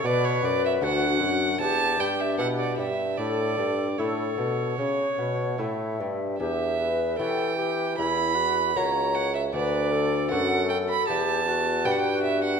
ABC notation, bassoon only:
X:1
M:4/4
L:1/8
Q:1/4=77
K:Amix
V:1 name="Bassoon" clef=bass
B,, F,, D,, F,, E,, G,, B,, G,, | A,, G,, A,, B,, C, B,, A,, G,, | [K:Bm] E,,2 E,2 E,,2 C,,2 | D,,2 F,,2 E,,2 G,,2 |]